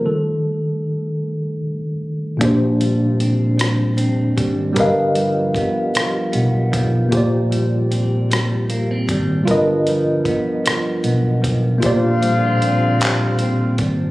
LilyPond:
<<
  \new Staff \with { instrumentName = "Tine electric piano" } { \time 6/8 \key bes \major \tempo 4. = 51 a'2 r4 | <bes, bes d' g' c''>2. | <g g' ais' b' dis'' f''>2. | <bes f' g' c'' d''>2. |
<g f' ais' b' dis''>2. | <bes f' g' c'' d''>2. | }
  \new Staff \with { instrumentName = "Tine electric piano" } { \clef bass \time 6/8 \key bes \major <ees g a>8 r2 r8 | r2. | r2. | r2. |
r2. | r2. | }
  \new Staff \with { instrumentName = "Horn section" } { \time 6/8 \key bes \major r2. | r2. | r2. | r2. |
r2. | <d c' f'>2~ <d c' f'>8 r8 | }
  \new Staff \with { instrumentName = "Clean electric guitar" } { \clef bass \time 6/8 \key bes \major r2. | bes,8 g8 c'8 g8 c'8 g8 | g,8 f8 b8 f8 b8 f8 | bes,8 g8 c'8 g8 bes16 c'16 g8 |
g,8 f8 b8 f8 b8 f8 | bes,8 g8 c'8 g8 c'8 g8 | }
  \new Staff \with { instrumentName = "Fretless electric bass" } { \clef bass \time 6/8 \key bes \major r2. | bes,,2~ bes,,8 aes,,8 | g,,4 r4 b,,4 | bes,,2~ bes,,8 aes,,8 |
g,,4 r4 b,,4 | bes,,2~ bes,,8 aes,,8 | }
  \new DrumStaff \with { instrumentName = "Drums" } \drummode { \time 6/8 r4. r4. | <hh bd>8 hh8 hh8 <hh ss>8 hh8 <hh bd>8 | <hh bd>8 hh8 <hh bd>8 <hh ss>8 hh8 <hh bd>8 | <hh bd>8 hh8 hh8 <hh ss>8 hh8 <hh bd>8 |
<hh bd>8 hh8 <hh bd>8 <hh ss>8 hh8 <hh bd>8 | <hh bd>8 hh8 hh8 <hc hh>8 hh8 <hh bd>8 | }
>>